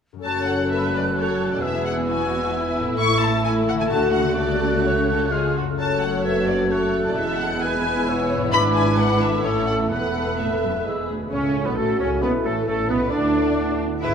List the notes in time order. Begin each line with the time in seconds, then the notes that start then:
0.13 F#2 F#3
0.18 C#4 A4
0.23 F#1 F#2 A3 C#4 F#4 A4 C#5 A5 F#6
0.48 F#5
0.69 B4 E5
0.95 D5
1.16 A4 C#5
1.44 E2
1.48 G#3 D5
1.53 E4
1.57 G#4 B4
1.61 E1 E2 B3 E4 E5 E6
1.86 F#5
2.07 F#4 G#5
2.53 E4
2.79 A2
2.84 A3
2.88 E4
2.93 A4
2.98 A1 A2 A3 E4 C#6
3.22 A5
3.43 E4 G#5
3.69 D3 F#5
3.77 A3 G#5
3.81 F#4
3.85 A4 A5
3.90 D2 D3 A3 F#4 F#6
4.12 F#5
4.19 C#3
4.23 A3
4.27 F#4
4.32 A3 F#4 A4
4.37 C#2 C#3 A4 D5
4.85 A3 F#4 C#5
5.09 C#3 A4
5.17 G#3
5.21 F4
5.26 C#5
5.31 G#3 F4 G#4 F6
5.56 F#2 F#4
5.65 A3
5.69 A4
5.74 C#5
5.78 F#1 F#2 A3 C#4 F#4 A4 C#5 A5 F#6
6.02 F#5
6.24 B3 E5 G#6
6.47 D5
6.70 A3 A4 C#5 F#6
6.98 E2
7.02 B3 D5
7.07 E4
7.12 E5
7.16 E1 E2 G#3 B3 E4 E5
7.40 F#5
7.62 B4 G#5
8.08 B3 C#5 E6
8.35 G#2
8.39 B3
8.44 E4
8.48 D5
8.52 G#1 G#2 B3 D4 B4 B5 D6
8.75 G#5
8.99 F#5
9.22 A2 E5
9.30 A3
9.35 E4
9.39 C#5
9.43 A1 A2 A3 C#4 A4 C#5 E6
9.67 F#5
9.73 E2
9.78 A3
9.82 E4
9.90 E1 E2 A3 B3 A4 B4 F#5 F#6
10.39 A2 E5
10.62 E2 F#2
10.71 G#3
10.76 E4
10.80 B4
10.85 E2 G#3 G#4 E6
11.09 D2
11.31 C#2 A2 C#3 C#4 A4 C#5
11.47 C#4
11.62 B3 E4 B4
11.67 B1 B2 B3
11.77 A1 A2 A3 F#4 A4
11.99 C#2 C#3 C#4 C#5
12.07 E5
12.22 B1 B2 B3 E4 B4 C#5
12.37 A4
12.44 A1 A2 A3 A4
12.52 C#4
12.67 A1 A2 A3 A4
12.82 B3
12.88 B1 B2 B3 B4
12.97 F#4
13.10 D2 D3 D4 B4 D5
13.27 F#4
13.42 F#5
13.56 B4
13.71 F#4
13.86 B3
14.01 G#1 G#2 E3 E4 G#4 B4 E5 B5